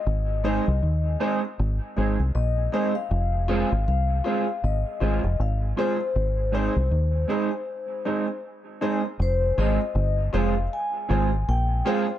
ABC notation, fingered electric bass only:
X:1
M:4/4
L:1/16
Q:"Swing 16ths" 1/4=79
K:Fm
V:1 name="Fingered electric bass" clef=bass
A,,,3 C,, E,,2 z2 A,,, z A,,, C,, B,,,2 z2 | F,,,3 A,,, C,,2 z2 A,,, z A,,, F,,, A,,,2 z2 | A,,,3 C,, E,,2 z8 z2 | F,,,2 A,,, z G,,,2 F,,,2 z2 A,,,2 B,,,2 z2 |]